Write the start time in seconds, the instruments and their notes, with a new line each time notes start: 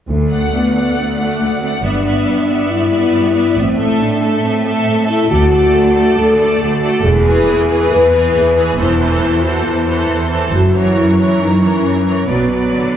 0.08 double bass section D2, cello section D2, french horn section A3
0.29 viola section A3, violin section D5 F#5
0.53 cello section D2, french horn section B3
0.74 viola section A3, violin section D5 F#5
0.96 cello section D2, french horn section A3
1.17 viola section A3, violin section D5 F#5
1.40 cello section D2
1.62 viola section A3, french horn section C4, violin section D5 F#5
1.83 double bass section G1, cello section G2, viola section B3, french horn section D4, violin section D5 E5
2.06 viola section B3, violin section D5 E5
2.26 cello section G2
2.49 viola section B3, violin section D5 E5
2.69 cello section G2, french horn section E4
2.92 viola section B3, violin section D5 E5
3.13 cello section G2
3.35 viola section B3, violin section D5 E5
3.56 double bass section A1, cello section A2, french horn section C4
3.78 viola section A3, violin section A4 E5
4.00 cello section A2, french horn section D4
4.22 viola section A3, violin section A4 E5
4.42 cello section A2, french horn section C4
4.65 viola section A3, violin section A4 E5
4.87 cello section A2
5.07 viola section A3, french horn section E4, violin section A4 E5
5.30 cello section D2, double bass section D2, viola section A3, french horn section F#4, violin section A4 D5
5.51 viola section A3, violin section A4 D5
5.73 cello section D2
5.95 viola section A3, violin section A4 D5
6.17 cello section D2, french horn section A4
6.38 viola section A3, violin section A4 D5
6.61 cello section D2, french horn section F#4
6.81 viola section A3, violin section A4 D5
7.03 double bass section E1, cello section E2, french horn section G#4
7.25 viola section E3, violin section G#4 B4
7.47 cello section E2
7.68 viola section E3, violin section G#4 B4
7.91 cello section E2, french horn section B4
8.12 viola section E3, violin section G#4 B4
8.35 cello section E2
8.57 viola section E3, violin section G#4 B4
8.78 double bass section E1, cello section E2, viola section E3, french horn section E4, violin section A4 C5
9.00 viola section E3, violin section A4 C5
9.21 cello section E2
9.43 viola section E3, french horn section F#4, violin section A4 C5
9.64 cello section E2, french horn section E4
9.86 viola section E3, violin section A4 C5
10.09 cello section E2
10.30 viola section E3, violin section A4 C5
10.52 double bass section F#1, cello section F#2, french horn section F#4
10.74 viola section E3, violin section A#4 C#5
10.96 cello section F#2, french horn section E4
11.17 viola section E3, violin section A#4 C#5
11.39 cello section F#2, french horn section D#4
11.60 viola section E3, french horn section C#4, violin section A#4 C#5
11.82 cello section F#2
12.05 viola section E3, violin section A#4 C#5
12.28 double bass section B1, cello section B2, viola section F#3, french horn section B3, violin section B4 D5
12.50 viola section F#3, violin section B4 D5
12.73 cello section D3